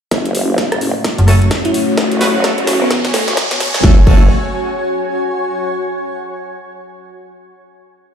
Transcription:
0.11 F#1 A3 C#4 F#4 C#5, kick, snare, closed hi-hat, riser
0.26 closed hi-hat
0.34 F#1 C#5, open hi-hat
0.58 kick, snare, closed hi-hat
0.72 F#1, cross-stick, closed hi-hat
0.81 open hi-hat
1.04 kick, snare, closed hi-hat
1.18 F#1, closed hi-hat
1.28 A3 C#4 F#4 A4, cross-stick, open hi-hat
1.42 closed hi-hat
1.51 kick, snare, closed hi-hat
1.65 E4 G#5, closed hi-hat
1.74 E4, open hi-hat
1.97 F#1, kick, snare, closed hi-hat
2.12 closed hi-hat
2.21 F#1 A3 C#4 F#4 B4, snare, open hi-hat
2.44 A3 C#4 F#4 A4, kick, snare, closed hi-hat
2.58 F#1, closed hi-hat
2.67 snare, open hi-hat
2.81 B3
2.91 E1, kick, snare, closed hi-hat
3.05 snare, closed hi-hat
3.14 E1 A3, snare, open hi-hat
3.28 snare, closed hi-hat
3.37 E1, kick, snare, closed hi-hat
3.51 B3, snare, closed hi-hat
3.60 snare, open hi-hat
3.74 snare
3.84 F#1 A3 C#4 F#4 A4, kick, snare
3.92 C#5
4.00 G#5
4.07 F#1 A3 C#4 F#4 A4, kick, crash

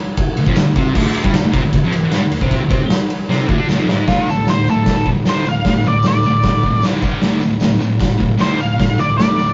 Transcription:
0.17 kick, ride
0.37 D2, ride
0.46 F2 F3, kick
0.55 D2, snare, ride, tambourine
0.76 C3 C4, kick, ride
0.94 D2 D3, kick, crash
1.14 ride
1.24 G2 G3, kick
1.33 D2, snare, ride, tambourine
1.44 muted distorted electric guitar stroke
1.52 C3 C4, kick, ride
1.63 D2
1.73 D2, kick, ride
1.84 F2 F3
1.92 muted distorted electric guitar stroke, ride
2.12 G2 G3, snare, ride, tambourine
2.22 D2
2.32 ride
2.41 C3 C4, kick
2.51 kick, ride
2.61 D2
2.69 C3 C4, kick, ride
2.90 snare, ride, tambourine
3.10 ride
3.29 C3 C4, snare
3.47 D2 D3, kick
3.57 D3 D4
3.69 D2 D3, snare, tambourine
3.78 F2 F3
3.88 G#2 G#3, snare
4.08 D2 A2 D3 F4, kick, snare, open hi-hat, tambourine
4.28 D2 A2 A4, tambourine
4.47 D2 A2 C5, snare, open hi-hat, tambourine
4.67 D2 A2 A4, tambourine
4.86 D2 A2, kick, snare, open hi-hat, tambourine
5.06 D2 A2, kick
5.25 D2 A2 D3 C5, snare, open hi-hat, tambourine
5.45 D2 A2 F5, tambourine
5.65 D2 A2, kick, snare, open hi-hat, tambourine
5.84 D2 A2 D5, tambourine
6.02 D2 A2, snare, open hi-hat, tambourine
6.08 D5
6.23 D2 A2, tambourine
6.42 D2 A2, kick, snare, open hi-hat, tambourine
6.63 D2 A2, kick
6.82 D2 A2 D3, snare, open hi-hat, tambourine
7.01 G2 D3 G3, kick, tambourine
7.21 D2 A2 D3, snare, open hi-hat, tambourine
7.40 D2 A2, tambourine
7.60 D2 A2, snare, open hi-hat, tambourine
7.79 D2 A2, tambourine
7.99 D2 A2, kick, snare, open hi-hat, tambourine
8.18 D2 A2, kick
8.38 D2 A2 D3 C5, snare, open hi-hat, tambourine
8.59 D2 A2 F5, tambourine
8.79 D2 A2, kick, snare, open hi-hat, tambourine
8.98 D2 A2 D5, tambourine
9.18 D2 A2 D5, snare, open hi-hat, tambourine
9.38 D2 A2, tambourine

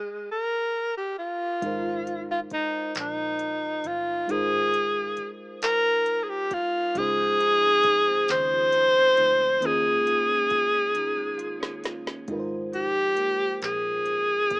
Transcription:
Already playing: G#3
0.31 A#4
0.97 G4
1.19 F4
1.62 G#1 G#3 D#4 F4 A#4, kick, closed hi-hat
1.67 C5
2.07 closed hi-hat
2.31 F4
2.50 D#4, muted fingered electric bass stroke, kick, closed hi-hat
2.95 A#1, clap, closed hi-hat
3.00 D#4
3.39 closed hi-hat
3.84 G1 F4, closed hi-hat
4.27 G#1 G#3 D#4 F4 G#4 A#4, closed hi-hat
4.32 C5
4.74 closed hi-hat
5.17 muted fingered electric bass stroke, closed hi-hat
5.62 A#4, clap, closed hi-hat
6.06 closed hi-hat
6.24 G#4
6.29 G4
6.51 F4, kick, closed hi-hat
6.94 C#2 C#3 G#3 D#4 F4 G#4, kick, closed hi-hat
7.00 C5
7.18 F3
7.40 D#4, closed hi-hat
7.63 C4
7.83 D#4, muted fingered electric bass stroke, kick, closed hi-hat
8.08 C4
8.28 D#2 C#3 C5, clap, closed hi-hat
8.51 F3
8.72 D#4, closed hi-hat
8.95 C4
9.17 D2 D#4, closed hi-hat
9.40 C4
9.60 D#2 D#3 A#3 C#4 F4, closed hi-hat
9.65 G#4
9.86 G#3
10.07 F4, closed hi-hat
10.28 C#4
10.50 F4, muted fingered electric bass stroke, kick, closed hi-hat
10.73 C#4
10.95 D#3, closed hi-hat
11.16 G#3
11.38 F4, closed hi-hat
11.60 C#4, snare
11.84 F4, snare, closed hi-hat
12.06 C#4, snare
12.28 G#1 G#2 G#3 D#4 F4 A#4, kick, closed hi-hat
12.33 B4
12.39 C5
12.73 F3 G4, closed hi-hat
13.16 A#3, muted fingered electric bass stroke, closed hi-hat
13.61 A#1 F3 G#4, clap, closed hi-hat
14.05 C4, closed hi-hat
14.50 G1 A#3, kick, closed hi-hat

